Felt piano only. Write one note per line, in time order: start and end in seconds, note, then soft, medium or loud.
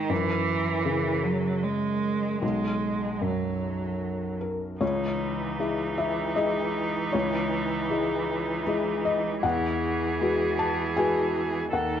0.00 0.10 D#3 soft
0.09 2.38 F#2 soft
0.85 2.42 C#3 soft
2.42 4.77 B1 soft
3.21 4.81 F#2 soft
4.41 4.78 A#4 soft
4.81 5.57 C#2 soft
4.81 5.93 C#5 medium
5.59 6.32 G#3 soft
5.59 6.33 E4 soft
5.59 5.96 E5 soft
5.98 6.34 E5 medium
6.36 7.09 G#3 soft
6.36 7.10 E4 soft
6.36 7.09 D#5 medium
7.12 7.88 C#2 soft
7.12 8.62 C#5 medium
7.90 8.62 G#3 soft
7.90 8.63 E4 soft
7.90 8.63 D#5 soft
8.67 9.40 G#3 soft
8.67 9.40 E4 soft
8.67 9.04 D#5 soft
9.05 9.41 D#5 medium
9.43 10.18 E2 soft
9.43 10.54 F#5 medium
10.21 10.93 G#3 soft
10.21 10.93 F#4 soft
10.21 10.93 B4 soft
10.59 10.94 A5 medium
10.96 11.69 G#3 soft
10.96 11.69 F#4 soft
10.96 11.69 B4 soft
10.96 11.69 G#5 medium
11.73 12.00 D#2 medium
11.73 12.00 F#5 medium